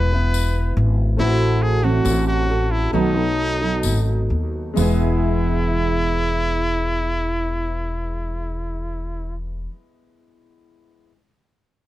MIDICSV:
0, 0, Header, 1, 6, 480
1, 0, Start_track
1, 0, Key_signature, 4, "major"
1, 0, Tempo, 848656
1, 672, Time_signature, 4, 2, 24, 8
1, 1159, Tempo, 894188
1, 2119, Tempo, 949367
1, 6180, End_track
2, 0, Start_track
2, 0, Title_t, "Trumpet"
2, 0, Program_c, 0, 56
2, 0, Note_on_c, 0, 71, 94
2, 437, Note_off_c, 0, 71, 0
2, 679, Note_on_c, 0, 64, 113
2, 920, Note_on_c, 0, 68, 99
2, 928, Note_off_c, 0, 64, 0
2, 1040, Note_on_c, 0, 66, 95
2, 1049, Note_off_c, 0, 68, 0
2, 1278, Note_off_c, 0, 66, 0
2, 1281, Note_on_c, 0, 66, 96
2, 1517, Note_on_c, 0, 64, 94
2, 1525, Note_off_c, 0, 66, 0
2, 1634, Note_off_c, 0, 64, 0
2, 1637, Note_on_c, 0, 63, 109
2, 2336, Note_off_c, 0, 63, 0
2, 2599, Note_on_c, 0, 64, 109
2, 4905, Note_off_c, 0, 64, 0
2, 6180, End_track
3, 0, Start_track
3, 0, Title_t, "Upright piano"
3, 0, Program_c, 1, 0
3, 0, Control_c, 1, 64, 127
3, 0, Note_on_c, 1, 64, 72
3, 0, Note_on_c, 1, 66, 67
3, 404, Note_off_c, 1, 64, 0
3, 410, Note_off_c, 1, 66, 0
3, 662, Note_on_c, 1, 57, 67
3, 667, Note_on_c, 1, 60, 61
3, 672, Note_on_c, 1, 64, 70
3, 677, Note_on_c, 1, 66, 67
3, 678, Control_c, 1, 64, 0
3, 684, Note_on_c, 1, 71, 61
3, 717, Note_off_c, 1, 71, 0
3, 721, Note_on_c, 1, 72, 77
3, 777, Control_c, 1, 64, 127
3, 1609, Note_off_c, 1, 57, 0
3, 1611, Note_off_c, 1, 60, 0
3, 1613, Note_off_c, 1, 64, 0
3, 1616, Note_off_c, 1, 66, 0
3, 1622, Note_on_c, 1, 57, 73
3, 1626, Note_on_c, 1, 59, 70
3, 1632, Note_on_c, 1, 63, 62
3, 1637, Note_off_c, 1, 72, 0
3, 1637, Note_on_c, 1, 66, 69
3, 1639, Control_c, 1, 64, 0
3, 1643, Note_on_c, 1, 71, 77
3, 1737, Control_c, 1, 64, 127
3, 2569, Note_off_c, 1, 57, 0
3, 2571, Note_off_c, 1, 59, 0
3, 2574, Note_off_c, 1, 63, 0
3, 2574, Note_on_c, 1, 56, 84
3, 2576, Note_off_c, 1, 66, 0
3, 2579, Note_off_c, 1, 71, 0
3, 2588, Note_on_c, 1, 59, 77
3, 2599, Control_c, 1, 64, 0
3, 2599, Note_on_c, 1, 64, 81
3, 2614, Note_on_c, 1, 71, 94
3, 2694, Control_c, 1, 64, 127
3, 5039, Note_off_c, 1, 56, 0
3, 5053, Note_off_c, 1, 59, 0
3, 5064, Note_off_c, 1, 64, 0
3, 5080, Note_off_c, 1, 71, 0
3, 5787, Control_c, 1, 64, 0
3, 6180, End_track
4, 0, Start_track
4, 0, Title_t, "Steel-string acoustic guitar"
4, 0, Program_c, 2, 25
4, 0, Note_on_c, 2, 59, 49
4, 0, Note_on_c, 2, 64, 59
4, 0, Note_on_c, 2, 71, 56
4, 65, Note_off_c, 2, 71, 0
4, 72, Note_on_c, 2, 71, 65
4, 73, Note_off_c, 2, 64, 0
4, 76, Note_off_c, 2, 59, 0
4, 80, Note_on_c, 2, 64, 54
4, 82, Note_on_c, 2, 59, 45
4, 668, Note_on_c, 2, 57, 70
4, 669, Note_off_c, 2, 59, 0
4, 669, Note_off_c, 2, 71, 0
4, 671, Note_on_c, 2, 60, 77
4, 672, Note_off_c, 2, 64, 0
4, 674, Note_on_c, 2, 66, 63
4, 678, Note_on_c, 2, 69, 66
4, 1029, Note_off_c, 2, 69, 0
4, 1031, Note_off_c, 2, 66, 0
4, 1034, Note_off_c, 2, 57, 0
4, 1034, Note_off_c, 2, 60, 0
4, 1036, Note_on_c, 2, 69, 68
4, 1038, Note_on_c, 2, 66, 72
4, 1040, Note_on_c, 2, 57, 70
4, 1041, Note_on_c, 2, 60, 78
4, 1043, Note_on_c, 2, 45, 64
4, 1043, Note_on_c, 2, 52, 66
4, 1386, Note_off_c, 2, 57, 0
4, 1390, Note_off_c, 2, 60, 0
4, 1392, Note_on_c, 2, 57, 60
4, 1394, Note_off_c, 2, 69, 0
4, 1395, Note_off_c, 2, 66, 0
4, 1396, Note_on_c, 2, 60, 56
4, 1397, Note_off_c, 2, 45, 0
4, 1398, Note_off_c, 2, 52, 0
4, 1401, Note_on_c, 2, 66, 59
4, 1403, Note_on_c, 2, 69, 69
4, 1631, Note_off_c, 2, 57, 0
4, 1631, Note_on_c, 2, 47, 77
4, 1634, Note_off_c, 2, 60, 0
4, 1634, Note_off_c, 2, 69, 0
4, 1635, Note_on_c, 2, 51, 87
4, 1635, Note_on_c, 2, 54, 82
4, 1636, Note_off_c, 2, 66, 0
4, 1636, Note_on_c, 2, 59, 76
4, 1639, Note_on_c, 2, 63, 80
4, 1640, Note_on_c, 2, 69, 81
4, 1748, Note_off_c, 2, 69, 0
4, 1752, Note_off_c, 2, 47, 0
4, 1752, Note_off_c, 2, 63, 0
4, 1754, Note_off_c, 2, 51, 0
4, 1754, Note_off_c, 2, 54, 0
4, 1754, Note_on_c, 2, 69, 60
4, 1755, Note_off_c, 2, 59, 0
4, 1759, Note_on_c, 2, 63, 54
4, 1761, Note_on_c, 2, 59, 52
4, 1765, Note_on_c, 2, 54, 44
4, 1990, Note_off_c, 2, 69, 0
4, 1992, Note_off_c, 2, 63, 0
4, 1996, Note_off_c, 2, 59, 0
4, 1997, Note_on_c, 2, 69, 60
4, 1998, Note_on_c, 2, 63, 49
4, 1999, Note_off_c, 2, 54, 0
4, 2003, Note_on_c, 2, 59, 51
4, 2006, Note_on_c, 2, 54, 51
4, 2584, Note_on_c, 2, 52, 89
4, 2588, Note_off_c, 2, 54, 0
4, 2590, Note_on_c, 2, 56, 95
4, 2593, Note_off_c, 2, 69, 0
4, 2594, Note_off_c, 2, 63, 0
4, 2596, Note_off_c, 2, 59, 0
4, 2598, Note_on_c, 2, 59, 91
4, 2602, Note_on_c, 2, 64, 74
4, 2608, Note_on_c, 2, 68, 99
4, 5069, Note_off_c, 2, 52, 0
4, 5075, Note_off_c, 2, 56, 0
4, 5083, Note_off_c, 2, 59, 0
4, 5088, Note_off_c, 2, 64, 0
4, 5093, Note_off_c, 2, 68, 0
4, 6180, End_track
5, 0, Start_track
5, 0, Title_t, "Upright bass"
5, 0, Program_c, 3, 32
5, 0, Note_on_c, 3, 28, 99
5, 410, Note_off_c, 3, 28, 0
5, 434, Note_on_c, 3, 32, 108
5, 653, Note_off_c, 3, 32, 0
5, 673, Note_on_c, 3, 33, 115
5, 1137, Note_off_c, 3, 33, 0
5, 1158, Note_on_c, 3, 33, 116
5, 1610, Note_off_c, 3, 33, 0
5, 1631, Note_on_c, 3, 35, 92
5, 2121, Note_on_c, 3, 32, 89
5, 2128, Note_off_c, 3, 35, 0
5, 2336, Note_off_c, 3, 32, 0
5, 2353, Note_on_c, 3, 39, 90
5, 2573, Note_off_c, 3, 39, 0
5, 2593, Note_on_c, 3, 28, 101
5, 5059, Note_off_c, 3, 28, 0
5, 6180, End_track
6, 0, Start_track
6, 0, Title_t, "Drums"
6, 193, Note_on_c, 9, 54, 94
6, 249, Note_off_c, 9, 54, 0
6, 1162, Note_on_c, 9, 54, 83
6, 1216, Note_off_c, 9, 54, 0
6, 2116, Note_on_c, 9, 54, 88
6, 2167, Note_off_c, 9, 54, 0
6, 2591, Note_on_c, 9, 54, 88
6, 2642, Note_off_c, 9, 54, 0
6, 6180, End_track
0, 0, End_of_file